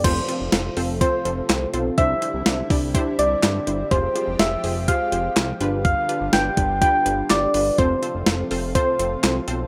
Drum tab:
CC |x-------|--------|--------|--------|
HH |xxxoxxxx|xxxoxxxx|xxxoxxxx|xxxxxxxo|
CP |------x-|------x-|------x-|------x-|
SD |--o---o-|--o---o-|--o---o-|--o---o-|
BD |o---o---|o--oo---|o---o---|o--oo---|

CC |--------|
HH |xxxoxxxx|
CP |------x-|
SD |--o---o-|
BD |o---o---|